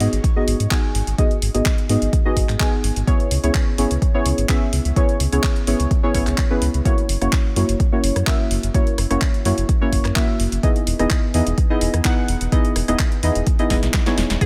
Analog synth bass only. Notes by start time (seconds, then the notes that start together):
0.00 G#2
0.13 G#1
0.47 G#1
0.60 G#2
0.95 G#1
1.07 G#1
1.42 G#1
1.54 G#1
1.89 G#2
2.02 G#1
2.37 G#1
2.49 G#2
2.84 G#1
2.96 G#1
3.31 C#2
3.43 C#2
3.78 G#1
3.91 C#2
4.26 C#2
4.38 G#1
4.73 C#2
4.85 C#2
5.20 C#2
5.32 C#2
5.67 G#1
5.80 C#2
6.14 G#1
6.27 C#2
6.62 C#2
6.74 C#2
7.09 F#1
7.21 F#1
7.56 F#2
7.69 F#1
8.04 F#1
8.16 F#2
8.51 F#1
8.63 F#1
8.98 F#1
9.10 F#1
9.45 F#2
9.58 F#1
9.93 F#1
10.05 F#2
10.40 F#1
10.52 F#1
10.87 E1
10.99 E1
11.34 E2
11.47 E1
11.81 E1
11.94 E2
12.28 E1
12.41 E1
12.76 E1
12.88 E1
13.23 E2
13.35 E1
13.70 E1
13.83 B1
14.17 E1
14.30 E1